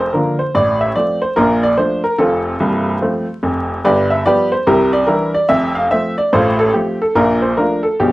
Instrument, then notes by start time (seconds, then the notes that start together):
upright piano
Already playing: C5
0.13 D3 F3 A#3 D4 F4 A#4
0.39 C5
0.55 A1 A2 D5
0.81 E5
0.95 F3 A3 C4 D5
1.22 C5
1.36 A#1 A#2 D4 F4 A#4
1.63 D5
1.77 F3 A3 D4 C5
2.04 A#4
2.18 F1 F2 C4 F4 A4
2.60 C1 C2
3.02 F3 A3 C4
3.43 F1 F2
3.85 G1 G2 G4 B4 D5
4.10 E5
4.26 F3 G3 B3 G4 B4 D5
4.52 C5
4.67 C2 C3 E4 G4 A#4
4.93 D5
5.06 E3 G3 D4 E4 G4 A#4
5.34 D5
5.49 F1 F2 E5
5.75 F5
5.91 F3 A3 C4 E5
6.18 D5
6.33 A1 A2 F4 A4 C5
6.59 A4
6.73 F3 A3 C4 G4
7.02 A4
7.15 A#1 A#2 D4 F4 A#4
7.42 C5
7.57 F3 A3 D4 F4 A#4
7.83 A4
8.00 B1 B2 F3 G#3 D4 G4